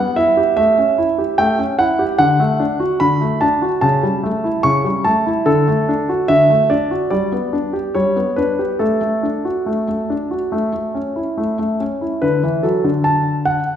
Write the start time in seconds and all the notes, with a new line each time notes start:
Already playing: B3 F#5
0.16 E4 E5
0.37 G4
0.57 A3 E5
0.78 C#4
0.98 E4
1.18 G4
1.38 A3 G5
1.59 C#4
1.79 E4 F#5
1.99 G4
2.18 D3 F#5
2.40 A3
2.60 D4
2.80 F#4
3.00 D3 B5
3.21 A3
3.41 D4 A5
3.62 F#4
3.81 C#3 A5
4.03 G3
4.23 A3
4.44 E4
4.63 C#3 C#6
4.84 G3
5.04 A3 A5
5.26 E4
5.46 D3 A4
5.68 A3
5.89 D4
6.09 F#4
6.28 D3 E5
6.50 A3
6.70 D4 D5
6.91 F#4
7.10 G3 D5
7.32 B3
7.53 D4
7.73 G4
7.95 G3 C#5
8.16 B3
8.36 D4 B4
8.59 G4
8.79 A3 A4
9.02 A3
9.23 D4
9.45 F#4
9.66 A3
9.88 A3
10.10 D4
10.31 F#4
10.52 A3
10.73 A3
10.95 C#4
11.16 E4
11.38 A3
11.59 A3
11.80 C#4
12.01 E4
12.22 D3 B4
12.43 E3
12.63 F#3 A4
12.84 D3
13.04 A5
13.45 F#5